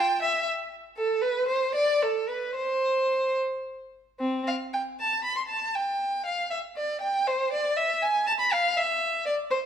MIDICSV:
0, 0, Header, 1, 2, 480
1, 0, Start_track
1, 0, Key_signature, 0, "major"
1, 0, Tempo, 509338
1, 915, Time_signature, 6, 3, 24, 8
1, 1894, Tempo, 544959
1, 4294, Tempo, 502513
1, 8997, End_track
2, 0, Start_track
2, 0, Title_t, "Violin"
2, 0, Program_c, 0, 40
2, 0, Note_on_c, 0, 79, 73
2, 209, Note_off_c, 0, 79, 0
2, 210, Note_on_c, 0, 76, 66
2, 437, Note_off_c, 0, 76, 0
2, 908, Note_on_c, 0, 69, 63
2, 1136, Note_off_c, 0, 69, 0
2, 1148, Note_on_c, 0, 71, 70
2, 1395, Note_off_c, 0, 71, 0
2, 1395, Note_on_c, 0, 72, 57
2, 1638, Note_off_c, 0, 72, 0
2, 1649, Note_on_c, 0, 74, 70
2, 1890, Note_off_c, 0, 74, 0
2, 1906, Note_on_c, 0, 69, 58
2, 2135, Note_off_c, 0, 69, 0
2, 2138, Note_on_c, 0, 71, 47
2, 2368, Note_on_c, 0, 72, 64
2, 2371, Note_off_c, 0, 71, 0
2, 3065, Note_off_c, 0, 72, 0
2, 3819, Note_on_c, 0, 60, 57
2, 4056, Note_off_c, 0, 60, 0
2, 4063, Note_on_c, 0, 77, 54
2, 4133, Note_off_c, 0, 77, 0
2, 4293, Note_on_c, 0, 79, 53
2, 4370, Note_off_c, 0, 79, 0
2, 4552, Note_on_c, 0, 81, 58
2, 4779, Note_on_c, 0, 83, 58
2, 4783, Note_off_c, 0, 81, 0
2, 4896, Note_on_c, 0, 84, 46
2, 4898, Note_off_c, 0, 83, 0
2, 4946, Note_off_c, 0, 84, 0
2, 5005, Note_on_c, 0, 81, 53
2, 5252, Note_off_c, 0, 81, 0
2, 5264, Note_on_c, 0, 79, 53
2, 5749, Note_off_c, 0, 79, 0
2, 5752, Note_on_c, 0, 77, 55
2, 5984, Note_off_c, 0, 77, 0
2, 5985, Note_on_c, 0, 76, 57
2, 6061, Note_off_c, 0, 76, 0
2, 6232, Note_on_c, 0, 74, 54
2, 6468, Note_off_c, 0, 74, 0
2, 6471, Note_on_c, 0, 79, 59
2, 6707, Note_off_c, 0, 79, 0
2, 6719, Note_on_c, 0, 72, 62
2, 6954, Note_off_c, 0, 72, 0
2, 6962, Note_on_c, 0, 74, 61
2, 7190, Note_off_c, 0, 74, 0
2, 7190, Note_on_c, 0, 76, 59
2, 7429, Note_off_c, 0, 76, 0
2, 7431, Note_on_c, 0, 80, 66
2, 7670, Note_off_c, 0, 80, 0
2, 7673, Note_on_c, 0, 81, 74
2, 7720, Note_off_c, 0, 81, 0
2, 7794, Note_on_c, 0, 83, 61
2, 7909, Note_off_c, 0, 83, 0
2, 7913, Note_on_c, 0, 77, 67
2, 8150, Note_off_c, 0, 77, 0
2, 8153, Note_on_c, 0, 76, 63
2, 8616, Note_on_c, 0, 74, 61
2, 8624, Note_off_c, 0, 76, 0
2, 8693, Note_off_c, 0, 74, 0
2, 8852, Note_on_c, 0, 72, 68
2, 8928, Note_off_c, 0, 72, 0
2, 8997, End_track
0, 0, End_of_file